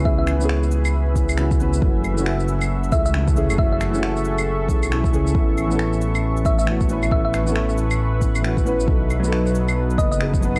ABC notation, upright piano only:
X:1
M:4/4
L:1/16
Q:"Swing 16ths" 1/4=136
K:Alyd
V:1 name="Upright piano"
[E,B,CG]3 [E,B,CG]6- [E,B,CG] [E,B,CB]2 [E,B,CF]2 [E,B,CB]2 | [E,A,CF]3 [E,A,CF]6- [E,A,CF] [E,A,CG]2 [E,A,CE]2 [E,A,CG]2 | [E,A,CF]3 [E,A,CF]6- [E,A,CF] [E,A,CG]2 [E,A,CE]2 [E,A,CG]2 | [E,B,CA]3 [E,B,CA]6- [E,B,CA] [E,B,CB]2 [E,B,CF]2 [E,B,CB]2 |
[E,B,CA]3 [E,B,CA]6- [E,B,CA] [E,B,CB]2 [E,B,CF]2 [E,B,CB]2 | [F,B,DA]3 [F,B,DA]6- [F,B,DA] [F,B,DB]2 [F,B,DG]2 [F,B,DB]2 |]